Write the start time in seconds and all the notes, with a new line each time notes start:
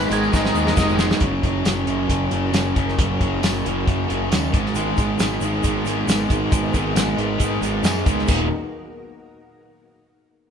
Already playing: D#3 G#3 B3 D#4 G#4 A#5
0.01 shaker
0.11 G#1 G#2 D#3 G#3 G#4, closed hi-hat, shaker
0.23 shaker
0.33 G#1 G#2 D#3 G#3 D#4, kick, snare, shaker
0.45 snare, shaker
0.54 D#2 G#2 D#3 G#3, shaker
0.67 snare, shaker
0.76 F1 G#2 D#3 G#3, kick, snare, shaker
0.89 shaker
0.99 G#2 D#3 G#3, snare, shaker
1.10 snare, shaker
1.20 F#1 F#2 C#3 F#3 A#3 C#4 F#4 A#4, kick, closed hi-hat
1.43 F#1 F#2 C#3 F#3, kick, closed hi-hat
1.65 F#1 F#2 C#3 F#3, snare, closed hi-hat, tambourine
1.87 F#1 F#2 C#3 F#3, closed hi-hat
2.09 F#1 F#2 C#3 F#3, kick, closed hi-hat
2.31 F#1 F#2 C#3 F#3, closed hi-hat
2.53 F#1 F#2 C#3 F#3, snare, closed hi-hat, tambourine
2.75 F#1 F#2 C#3 F#3, kick, closed hi-hat
2.89 snare
2.98 F#1 F#2 C#3 F#3, kick, closed hi-hat
3.21 F#1 F#2 C#3 F#3, kick, closed hi-hat
3.42 F#1 F#2 C#3 F#3, snare, closed hi-hat, tambourine
3.65 F#1 F#2 C#3 F#3, closed hi-hat
3.87 F#2 C#3 F#3, kick, closed hi-hat
4.08 F#1 F#2 C#3 F#3, closed hi-hat
4.30 D#2 F#2 C#3 F#3, snare, closed hi-hat, tambourine
4.52 G#1 G#2 D#3 G#3 B3 D#4 G#4 A#4, kick, closed hi-hat
4.66 snare
4.74 G#1 G#2 D#3 G#3, closed hi-hat, shaker
4.97 G#1 G#2 D#3 G#3, kick, closed hi-hat, shaker
5.19 G#1 G#2 D#3 G#3, snare, closed hi-hat, tambourine, shaker
5.41 G#1 G#2 D#3 G#3, closed hi-hat, shaker
5.63 G#1 G#2 D#3 G#3, kick, closed hi-hat, shaker
5.85 G#1 G#2 D#3 G#3, closed hi-hat, shaker
6.07 G#1 G#2 D#3 G#3, snare, closed hi-hat, tambourine, shaker
6.29 G#1 G#2 D#3 G#3, kick, closed hi-hat, shaker
6.52 G#1 G#2 D#3 G#3, kick, closed hi-hat, shaker
6.74 G#1 G#2 D#3 G#3, kick, closed hi-hat, shaker
6.95 G#1 G#2 D#3 G#3, snare, closed hi-hat, tambourine, shaker
7.16 G#1 G#2 D#3 G#3, closed hi-hat
7.38 G#2 D#3 G#3, kick, closed hi-hat, shaker
7.61 G#1 G#2 D#3 G#3, closed hi-hat, shaker
7.83 F#2 G#2 D#3 G#3, snare, closed hi-hat, tambourine, shaker
8.05 C#2 G#2 D#3 G#3, kick, closed hi-hat, shaker
8.19 snare
8.27 D#1 D#2 A#2 D#3 F#3 A#3 D#4 F#4 A#4, kick, crash, shaker